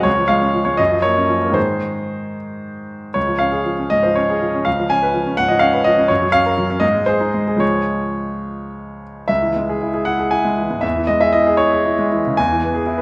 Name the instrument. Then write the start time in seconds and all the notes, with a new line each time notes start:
grand piano
0.03 C#2 C#5
0.18 F3
0.28 G#3 F5
0.42 C#4
0.54 F3
0.65 G#3 C#5
0.77 F#2 D#5
0.92 F3
1.02 A#3 C#5
1.17 C#4
1.29 F3
1.43 A#3
1.50 G#2 D#3 D#4
1.54 G#4 C5
3.14 C#2 C#5
3.27 F3
3.39 C#4 F5
3.52 G#4
3.65 F3
3.79 C#4
3.90 G#2 D#5
4.03 F3 C5
4.15 C#4 C#5
4.30 G#4
4.41 F3
4.54 C#4
4.65 C#2 F5
4.79 F3
4.90 C#4 G#5
5.03 B4
5.14 F3
5.27 C#4
5.37 G#2 F#5
5.48 F3 D#5
5.59 C#4 F5
5.73 B4
5.84 F3 D#5
5.98 C#4
6.08 F#2 C#5
6.22 F#3
6.32 C#4 F5
6.46 A#4
6.58 F#3
6.70 C#4
6.80 G#2 D#5
6.94 G#3
7.06 G#4 C5
7.21 D#4
7.34 G#3
7.47 G#4
7.56 C#2 F3 G#3 G#4 C#5
9.28 C#2 E5
9.43 E3
9.56 G#3
9.69 G#4
9.82 E4
9.94 G#4
10.05 E4 F#5
10.19 G#4
10.31 E4 G#5
10.45 G#3
10.57 E3
10.71 G#2
10.81 E2 E5
10.96 E3
11.07 G#3 D#5
11.21 G#4 E5
11.33 E4 D#5
11.47 G#4
11.57 E4 C#5
11.72 G#4
11.86 E4
11.99 G#3
12.12 E3
12.27 C#3
12.37 E2 G#5
12.52 E3
12.64 B3
12.75 G#4
12.86 E4
12.98 B4